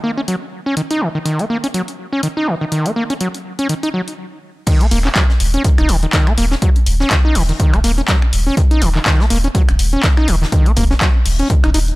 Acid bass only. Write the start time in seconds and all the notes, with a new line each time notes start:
0.04 A#3
0.17 C#4
0.28 F#3
0.66 C#4
0.77 D#3
0.91 D#4
1.01 D#3
1.15 D#3
1.25 D#3
1.39 A#3
1.50 A#3
1.64 C#4
1.74 F#3
2.13 C#4
2.23 D#3
2.37 D#4
2.47 D#3
2.61 D#3
2.72 D#3
2.86 A#3
2.96 A#3
3.10 C#4
3.21 F#3
3.59 C#4
3.69 D#3
3.83 D#4
3.94 F#3
4.67 D#3
4.81 A#3
4.91 A#3
5.05 C#4
5.16 F#3
5.54 C#4
5.64 D#3
5.78 D#4
5.89 D#3
6.03 D#3
6.13 D#3
6.27 A#3
6.38 A#3
6.51 C#4
6.62 F#3
7.00 C#4
7.11 D#3
7.25 D#4
7.35 D#3
7.49 D#3
7.60 D#3
7.73 A#3
7.84 A#3
7.98 C#4
8.08 F#3
8.47 C#4
8.57 D#3
8.71 D#4
8.82 D#3
8.95 D#3
9.06 D#3
9.20 A#3
9.30 A#3
9.44 C#4
9.55 F#3
9.93 C#4
10.04 D#3
10.17 D#4
10.28 D#3
10.42 D#3
10.52 D#3
10.66 A#3
10.77 A#3
10.91 C#4
11.01 F#3
11.39 C#4
11.50 D#3
11.64 D#4
11.74 D#4